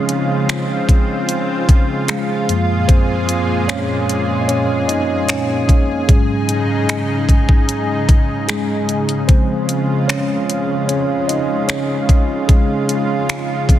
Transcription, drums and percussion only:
0.09 closed hi-hat medium
0.49 finger snap loud
0.49 closed hi-hat medium
0.89 kick medium
0.89 closed hi-hat medium
1.29 closed hi-hat medium
1.69 kick medium
1.69 closed hi-hat medium
2.08 finger snap loud
2.08 closed hi-hat medium
2.49 closed hi-hat medium
2.89 kick loud
2.89 closed hi-hat medium
3.29 closed hi-hat medium
3.69 finger snap loud
3.69 closed hi-hat medium
4.09 closed hi-hat medium
4.49 closed hi-hat medium
4.89 closed hi-hat medium
5.29 finger snap loud
5.29 closed hi-hat medium
5.69 kick medium
5.69 closed hi-hat medium
6.09 kick loud
6.09 closed hi-hat medium
6.49 closed hi-hat medium
6.89 finger snap loud
6.89 closed hi-hat medium
7.29 kick medium
7.29 closed hi-hat medium
7.49 kick medium
7.69 closed hi-hat medium
8.09 kick loud
8.09 closed hi-hat medium
8.49 finger snap loud
8.49 closed hi-hat medium
8.89 closed hi-hat medium
9.09 closed hi-hat medium
9.29 kick loud
9.29 closed hi-hat medium
9.69 closed hi-hat medium
10.09 finger snap loud
10.09 closed hi-hat medium
10.50 closed hi-hat medium
10.89 closed hi-hat medium
11.29 closed hi-hat medium
11.69 finger snap loud
11.69 closed hi-hat medium
12.09 kick medium
12.09 closed hi-hat medium
12.49 kick loud
12.49 closed hi-hat medium
12.89 closed hi-hat medium
13.29 finger snap loud
13.29 closed hi-hat medium
13.69 kick medium
13.69 closed hi-hat medium

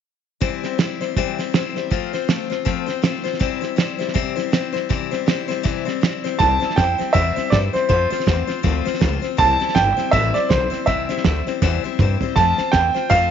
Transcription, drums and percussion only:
0.41 kick loud
0.41 snare soft
0.64 snare soft
0.79 snare loud
0.79 hi-hat pedal medium
1.01 snare soft
1.17 kick loud
1.17 snare soft
1.39 snare soft
1.54 snare loud
1.54 hi-hat pedal medium
1.76 snare soft
1.92 kick loud
1.92 snare soft
2.14 snare soft
2.29 snare loud
2.29 hi-hat pedal medium
2.51 snare soft
2.66 kick loud
2.66 snare soft
2.89 snare soft
3.04 snare loud
3.04 hi-hat pedal medium
3.26 snare soft
3.33 snare soft
3.41 kick loud
3.41 snare soft
3.63 snare soft
3.78 snare loud
3.78 hi-hat pedal medium
4.01 snare soft
4.08 snare soft
4.15 kick loud
4.15 snare soft
4.38 snare soft
4.53 snare loud
4.53 hi-hat pedal medium
4.76 snare soft
4.90 kick loud
4.90 snare soft
5.13 snare soft
5.28 snare loud
5.28 hi-hat pedal medium
5.50 snare soft
5.65 kick loud
5.65 snare soft
5.88 snare soft
6.03 snare loud
6.03 hi-hat pedal medium
6.26 snare soft
6.40 kick loud
6.40 snare soft
6.62 snare soft
6.70 snare soft
6.78 kick medium
6.78 snare loud
6.78 hi-hat pedal medium
7.00 snare soft
7.15 kick loud
7.15 snare soft
7.37 snare soft
7.52 kick medium
7.52 snare loud
7.52 hi-hat pedal medium
7.75 snare soft
7.90 kick loud
7.90 snare soft
8.12 snare soft
8.20 snare soft
8.27 kick medium
8.27 snare loud
8.27 hi-hat pedal medium
8.49 snare soft
8.64 kick loud
8.64 snare soft
8.86 snare soft
8.94 snare soft
9.01 kick medium
9.01 snare loud
9.01 hi-hat pedal medium
9.24 snare soft
9.39 kick loud
9.39 snare soft
9.61 snare soft
9.68 snare soft
9.76 kick medium
9.76 snare loud
9.76 hi-hat pedal medium
9.98 snare soft
10.13 kick loud
10.13 snare soft
10.35 snare soft
10.50 kick medium
10.50 snare loud
10.50 hi-hat pedal medium
10.73 snare soft
10.87 kick loud
10.87 snare soft
11.09 snare soft
11.17 snare soft
11.25 kick medium
11.25 snare loud
11.25 hi-hat pedal medium
11.47 snare soft
11.62 kick loud
11.62 snare medium
11.99 kick medium
11.99 hi-hat pedal medium
11.99 mid tom medium
12.21 floor tom medium
12.36 kick loud
12.36 snare soft
12.58 snare soft
12.73 kick medium
12.73 snare loud
12.73 hi-hat pedal medium
12.95 snare soft
13.11 kick loud
13.11 snare soft

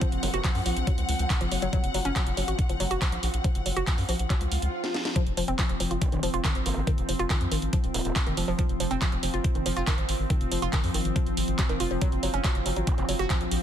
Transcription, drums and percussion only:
0.01 kick loud
0.01 closed hi-hat medium
0.12 closed hi-hat soft
0.23 open hi-hat loud
0.34 closed hi-hat medium
0.44 kick loud
0.44 clap loud
0.44 closed hi-hat medium
0.55 open hi-hat medium
0.66 open hi-hat loud
0.77 closed hi-hat medium
0.87 kick loud
0.87 closed hi-hat medium
0.98 closed hi-hat medium
1.09 open hi-hat loud
1.19 closed hi-hat medium
1.30 kick loud
1.30 clap loud
1.30 closed hi-hat loud
1.41 closed hi-hat medium
1.52 open hi-hat loud
1.62 closed hi-hat medium
1.73 kick loud
1.73 closed hi-hat medium
1.84 closed hi-hat medium
1.94 open hi-hat loud
2.05 closed hi-hat medium
2.16 kick loud
2.16 clap loud
2.16 closed hi-hat medium
2.27 closed hi-hat medium
2.37 open hi-hat loud
2.48 closed hi-hat medium
2.59 kick loud
2.59 closed hi-hat loud
2.69 closed hi-hat medium
2.80 open hi-hat loud
2.91 closed hi-hat medium
3.02 kick loud
3.02 clap loud
3.02 closed hi-hat loud
3.12 closed hi-hat medium
3.23 open hi-hat loud
3.34 closed hi-hat medium
3.44 kick loud
3.44 closed hi-hat loud
3.55 closed hi-hat medium
3.66 open hi-hat loud
3.77 closed hi-hat medium
3.87 kick loud
3.87 clap loud
3.87 closed hi-hat loud
3.98 open hi-hat medium
4.09 open hi-hat loud
4.19 closed hi-hat medium
4.30 kick loud
4.30 clap medium
4.30 closed hi-hat loud
4.41 closed hi-hat medium
4.52 open hi-hat loud
4.62 closed hi-hat medium
4.84 snare medium
4.94 snare medium
5.05 snare medium
5.16 kick loud
5.16 closed hi-hat loud
5.27 closed hi-hat soft
5.37 open hi-hat loud
5.48 closed hi-hat soft
5.59 kick loud
5.59 clap loud
5.59 closed hi-hat loud
5.69 closed hi-hat soft
5.80 open hi-hat loud
5.91 closed hi-hat soft
6.02 kick loud
6.02 closed hi-hat loud
6.12 closed hi-hat soft
6.23 open hi-hat loud
6.34 closed hi-hat soft
6.44 kick loud
6.44 clap loud
6.44 closed hi-hat loud
6.55 closed hi-hat soft
6.66 open hi-hat loud
6.87 kick loud
6.87 closed hi-hat medium
6.98 closed hi-hat soft
7.09 open hi-hat loud
7.19 closed hi-hat soft
7.30 kick loud
7.30 clap loud
7.30 closed hi-hat medium
7.41 closed hi-hat soft
7.52 open hi-hat loud
7.62 closed hi-hat soft
7.73 kick loud
7.73 closed hi-hat medium
7.84 closed hi-hat soft
7.94 open hi-hat loud
8.05 closed hi-hat soft
8.16 kick loud
8.16 clap loud
8.16 closed hi-hat loud
8.27 closed hi-hat soft
8.37 open hi-hat loud
8.59 kick loud
8.59 closed hi-hat medium
8.69 closed hi-hat soft
8.80 open hi-hat loud
8.91 closed hi-hat soft
9.02 kick loud
9.02 clap loud
9.02 closed hi-hat medium
9.12 closed hi-hat soft
9.23 open hi-hat loud
9.34 closed hi-hat soft
9.44 kick loud
9.44 closed hi-hat medium
9.55 closed hi-hat soft
9.66 open hi-hat loud
9.77 closed hi-hat soft
9.87 kick loud
9.87 clap loud
9.87 closed hi-hat medium
9.98 closed hi-hat soft
10.09 open hi-hat loud
10.30 kick loud
10.30 closed hi-hat medium
10.41 closed hi-hat soft
10.52 open hi-hat loud
10.62 closed hi-hat soft
10.73 kick loud
10.73 clap loud
10.73 closed hi-hat medium
10.84 open hi-hat medium
10.94 open hi-hat loud
11.05 closed hi-hat soft
11.16 kick loud
11.16 closed hi-hat medium
11.27 closed hi-hat soft
11.37 open hi-hat loud
11.48 closed hi-hat soft
11.59 kick loud
11.59 clap loud
11.59 closed hi-hat medium
11.69 closed hi-hat soft
11.80 open hi-hat loud
12.02 kick loud
12.02 closed hi-hat medium
12.12 closed hi-hat soft
12.23 open hi-hat loud
12.34 closed hi-hat soft
12.44 kick loud
12.44 clap loud
12.44 closed hi-hat medium
12.55 closed hi-hat soft
12.66 open hi-hat loud
12.76 closed hi-hat soft
12.87 kick loud
12.87 closed hi-hat medium
12.98 closed hi-hat soft
13.09 open hi-hat loud
13.19 closed hi-hat soft
13.30 kick loud
13.30 clap loud
13.30 closed hi-hat medium
13.41 closed hi-hat soft
13.51 open hi-hat loud

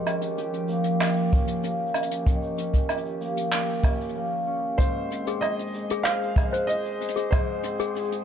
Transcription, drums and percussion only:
0.06 closed hi-hat medium
0.06 low woodblock medium
0.06 shaker medium
0.21 closed hi-hat medium
0.21 shaker soft
0.37 closed hi-hat soft
0.37 shaker medium
0.53 closed hi-hat soft
0.68 shaker medium
0.84 closed hi-hat medium
0.84 shaker soft
1.00 clap medium
1.00 closed hi-hat medium
1.00 low woodblock medium
1.00 shaker medium
1.02 closed hi-hat soft
1.04 closed hi-hat soft
1.06 closed hi-hat soft
1.09 closed hi-hat soft
1.11 closed hi-hat soft
1.17 shaker soft
1.32 kick loud
1.32 shaker medium
1.47 closed hi-hat medium
1.63 closed hi-hat medium
1.63 shaker soft
1.87 shaker soft
1.94 closed hi-hat soft
1.94 low woodblock medium
1.94 shaker medium
2.03 closed hi-hat medium
2.11 closed hi-hat medium
2.11 shaker medium
2.27 kick medium
2.27 closed hi-hat medium
2.27 shaker medium
2.42 shaker soft
2.58 closed hi-hat medium
2.58 shaker medium
2.74 kick medium
2.74 closed hi-hat medium
2.74 shaker soft
2.89 closed hi-hat soft
2.89 low woodblock medium
2.89 shaker soft
2.97 closed hi-hat soft
3.05 shaker soft
3.21 shaker medium
3.37 closed hi-hat medium
3.37 shaker soft
3.52 clap medium
3.52 closed hi-hat medium
3.52 shaker medium
3.69 shaker soft
3.84 kick medium
3.84 closed hi-hat medium
3.84 low woodblock medium
3.84 shaker medium
4.01 closed hi-hat soft
4.01 shaker soft
4.09 closed hi-hat soft
4.79 kick medium
4.79 closed hi-hat medium
4.79 shaker medium
5.11 closed hi-hat medium
5.11 shaker medium
5.27 closed hi-hat medium
5.27 shaker soft
5.42 closed hi-hat medium
5.42 low woodblock medium
5.42 shaker medium
5.59 closed hi-hat soft
5.67 shaker soft
5.74 shaker medium
5.90 closed hi-hat medium
5.90 shaker soft
6.06 clap medium
6.06 closed hi-hat medium
6.06 shaker medium
6.22 shaker soft
6.36 kick loud
6.36 low woodblock medium
6.36 shaker medium
6.54 closed hi-hat medium
6.54 shaker medium
6.69 closed hi-hat medium
6.69 shaker medium
6.85 shaker medium
7.01 closed hi-hat medium
7.01 shaker medium
7.09 closed hi-hat medium
7.16 closed hi-hat medium
7.16 shaker soft
7.32 kick loud
7.32 closed hi-hat medium
7.32 low woodblock medium
7.32 shaker medium
7.63 closed hi-hat medium
7.63 shaker medium
7.79 closed hi-hat medium
7.79 shaker medium
7.96 closed hi-hat soft
7.96 shaker medium
8.03 shaker soft
8.12 closed hi-hat medium

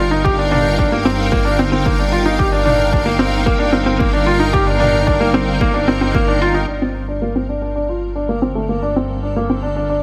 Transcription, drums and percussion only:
0.26 kick medium
0.52 mid tom medium
0.79 kick loud
1.33 kick medium
1.86 kick medium
2.40 kick medium
2.66 mid tom medium
2.93 kick medium
3.47 kick medium
4.00 kick medium
4.54 kick medium
4.81 mid tom medium
5.08 kick medium
5.61 kick loud
6.15 kick loud

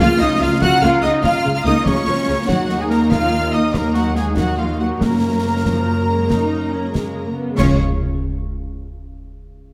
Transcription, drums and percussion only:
0.62 concert bass drum medium
0.62 snare medium
0.82 snare soft
1.03 snare soft
1.24 concert bass drum medium
1.24 snare medium
1.65 snare soft
1.86 concert bass drum medium
1.86 snare medium
2.49 concert bass drum medium
2.49 snare medium
2.69 snare soft
2.90 snare soft
3.12 concert bass drum medium
3.12 snare medium
3.74 concert bass drum medium
3.74 snare medium
3.94 snare soft
4.16 snare soft
4.37 concert bass drum medium
4.37 snare medium
5.01 concert bass drum medium
5.01 snare medium
5.65 concert bass drum medium
5.65 snare medium
6.30 concert bass drum medium
6.30 snare medium
6.95 concert bass drum medium
6.95 snare medium
7.59 concert bass drum medium
7.59 snare medium
7.59 crash medium

